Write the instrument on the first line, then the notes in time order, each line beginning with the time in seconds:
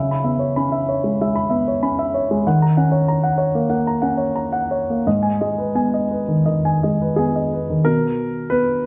grand piano
Already playing: C#3 E5
0.11 B5
0.24 B3 E5
0.39 C#5
0.56 C#4 B5
0.72 E5
0.89 C#5
1.04 G#3
1.21 G#3 E5
1.36 B5
1.50 B3 E5
1.68 C#5
1.82 C#4 B5
1.99 E5
2.14 C#5
2.31 G#3
2.47 D#3 F#5
2.62 A#5
2.77 C#4 F#5
2.92 C#5
3.08 A#5
3.23 F#5
3.38 C#5
3.55 A#3
3.70 A#3 F#5
3.87 A#5
4.02 C#4 F#5
4.18 C#5
4.36 A#5
4.53 F#5
4.71 C#5
4.90 A#3
5.07 G#2 D#5
5.23 G#5
5.41 G#3 D#5
5.58 B4
5.75 B3 G#5
5.94 D#5
6.11 B4
6.28 D#3
6.46 D#3 D#5
6.65 G#5
6.83 G#3 D#5
7.02 B4
7.16 B3 G#4 G#5
7.36 D#5
7.53 B4
7.70 D#3
7.85 B2 A#4
8.50 B3 B4